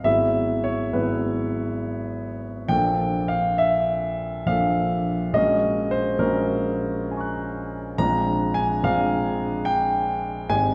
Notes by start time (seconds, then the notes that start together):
0.03 G#1 F#3 B3 E4 G#4 E5
0.64 C#5
0.93 G#1 F#3 B3 E4 G#4 B4
2.68 A#1 F3 A#3 D4 A4 G5
3.28 F5
3.58 E5
4.46 A#1 F3 A#3 D4 A4 F5
5.33 A#1 G#3 A#3 C#4 F#4 D#5
5.91 C5
6.18 A#1 G#3 A#3 C#4 F#4 A#4
7.11 G#5 A#5
7.17 C#6 F#6
7.98 A#1 G#3 C4 D4 F4 A#5
8.54 G#5
8.83 A#1 G#3 C4 D4 F4 F5
9.65 G5
10.49 G#1 G#3 C4 D#4 G4 G#5